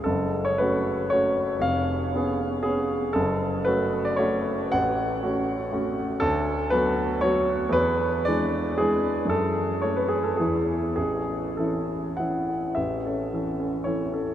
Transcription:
\new Staff \with { instrumentName = "Grand piano" } { \time 3/4 \key fis \minor \tempo 4 = 115 << { a'8. cis''16 b'4 cis''4 | eis''2 gis'4 | a'4 b'8. d''16 cis''4 | fis''2 r4 |
\key a \major a'4 b'4 cis''4 | b'4 d''4 gis'4 | a'4 cis''16 b'16 gis'16 a'16 gis'4 | gis'4 a'4 fis''4 |
e''2 cis''4 | } \\ { fis,,4 <a cis' fis'>4 <a cis' fis'>4 | eis,,4 <b cis' gis'>4 <b cis'>4 | fis,,4 <a cis' fis'>4 <a cis' fis'>4 | a,,4 <a cis' fis'>4 <a cis' fis'>4 |
d,4 <fis b fis'>4 <fis b fis'>4 | e,4 <e gis d'>4 <e gis d'>4 | fis,4 <a cis'>4 <e, e b e'>4 | a,,4 <e cis' e'>4 <e cis' e'>4 |
a,,8 <cis' a'>8 <e cis' a'>8 <cis' a'>8 <e cis' a'>8 <cis' a'>8 | } >> }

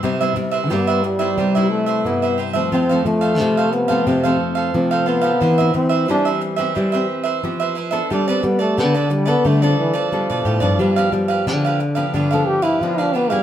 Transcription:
<<
  \new Staff \with { instrumentName = "Cavaquinho" } { \time 4/4 \key c \major \tempo 4 = 89 <g' b' c'' e''>16 <b' c'' e''>16 r16 <b' c'' e''>16 <g' b' c'' e''>16 <b' c'' e''>16 r16 <b' c'' e''>16 <g' b' c'' e''>16 <b' c'' e''>8 <b' c'' e''>8 <b' c'' e''>16 <g' b' c'' e''>16 <b' c'' e''>16 | <f' a' c'' f''>16 <a' c'' f''>16 r16 <a' c'' f''>16 <f' a' c'' f''>16 <a' c'' f''>16 r16 <a' c'' f''>16 <f' a' c'' f''>16 <a' c'' f''>8 <a' c'' f''>8 <a' c'' f''>16 <f' a' c'' f''>16 <a' c'' f''>16 | <e' b' c'' e''>16 <b' c'' e''>16 r16 <b' c'' e''>16 <e' b' c'' e''>16 <b' c'' e''>16 r16 <b' c'' e''>16 <e' b' c'' e''>16 <b' c'' e''>8 <b' c'' e''>8 <b' c'' e''>16 <e' b' c'' e''>16 <b' c'' e''>16 | <g' a' b' d''>16 <a' b' d''>16 r16 <a' b' d''>16 <g' a' b' d''>16 <a' b' d''>16 r16 <a' b' d''>16 <g' a' b' d''>16 <a' b' d''>8 <a' b' d''>8 <a' b' d''>16 <g' a' b' d''>16 <a' b' d''>16 |
<d' g' b' f''>16 <g' b' f''>16 r16 <g' b' f''>16 <d' g' b' f''>16 <g' b' f''>16 r16 <g' b' f''>16 <d' g' b' f''>16 <g' b' f''>8 <g' b' f''>8 <g' b' f''>16 <d' g' b' f''>16 <g' b' f''>16 | }
  \new Staff \with { instrumentName = "Nylon-string guitar" } { \time 4/4 \key c \major << { <g b e'>16 <g b e'>8. <g b e'>8. <g b e'>8 <g e'>8. <g b e'>8. <f a c'>16~ | <f a c'>16 <f a c'>8. <f a c'>8. <f a c'>8 <f a c'>8. <f a c'>8. <b c' g'>16~ | <b c' g'>16 <b c' g'>8. <b c' g'>8. <b c' g'>8 <c' g'>8. <b c' g'>8 r16 <b d' a'>16~ | <b d' a'>16 <b d' a'>8. <b d' a'>8 r16 <b d' a'>8 <b d' a'>8. <b d' a'>8. <f b d'>16~ |
<f b d'>16 <f b d'>8. <f b d'>8 r16 <f b d'>8 <f b d'>8. <f b d'>8 r16 <b d' aes'>16 | } \\ { c4 g,4 c4 g,4 | f,4 c4 f,4 c4 | e4 e4 e4 r4 | g4 d4 g4 d4 |
g,4 d4 g,4 d4 | } >> }
  \new Staff \with { instrumentName = "Trombone" } { \time 4/4 \key c \major r4 b8 g4 a8 b8 r8 | c'8 a4 b8 c'8 r8 c'8 b8~ | b8 c'8 d'8 r2 r8 | d'16 c'16 b16 a16 b16 d16 g16 b16 a16 f16 e16 f4~ f16~ |
f4~ f16 r4 a'16 g'16 e'16 f'16 d'16 b16 g16 | }
  \new Staff \with { instrumentName = "Nylon-string guitar" } { \clef bass \time 4/4 \key c \major c8 c8 g4 g8 r8 c4 | f8 f8 c4 c8 r8 f4 | e8 e8 g4 g8 r8 f4 | g8 g8 d4 d8 r8 g16 b,16 a,16 g,16 |
g8 g8 d4 d8 r8 f4 | }
>>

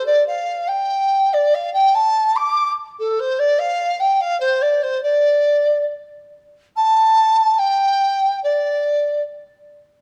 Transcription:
\new Staff \with { instrumentName = "Dizi" } { \time 2/4 \tempo 4 = 72 d''16 f''8 g''8. d''16 f''16 | g''16 a''8 d'''8 r16 a'16 c''16 | d''16 f''8 g''16 f''16 c''16 d''16 c''16 | d''4 r4 |
a''4 g''4 | d''4 r4 | }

